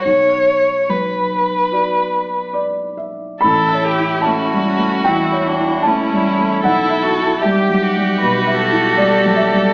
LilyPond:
<<
  \new Staff \with { instrumentName = "Violin" } { \time 4/4 \key a \mixolydian \tempo 4 = 75 cis''4 b'2 r4 | a'8 g'8 fis'2 e'4 | a'4 g'4 b'8 a'4. | }
  \new Staff \with { instrumentName = "Cello" } { \time 4/4 \key a \mixolydian r1 | e'2 e'2~ | e'4 g'8 fis'2~ fis'8 | }
  \new Staff \with { instrumentName = "Felt piano" } { \time 4/4 \key a \mixolydian r2. d''8 e''8 | b''4 a''4 g''4 a''4 | fis''4 e''4. r8 d''8 e''8 | }
  \new Staff \with { instrumentName = "Felt piano" } { \clef bass \time 4/4 \key a \mixolydian b,,4 fis4 <fis' d''>2 | \tuplet 3/2 { a,,8 cis''8 e'8 a8 g8 a8 e,8 cis''8 e'8 a8 g8 a8 } | \tuplet 3/2 { b,,8 e''8 e'8 g8 fis8 g8 b,8 e''8 e'8 g8 fis8 g8 } | }
  \new Staff \with { instrumentName = "Viola" } { \time 4/4 \key a \mixolydian r1 | e'4 cis'8 cis'8 e'8 d'8 cis'4 | e'8 fis'8 g'2. | }
>>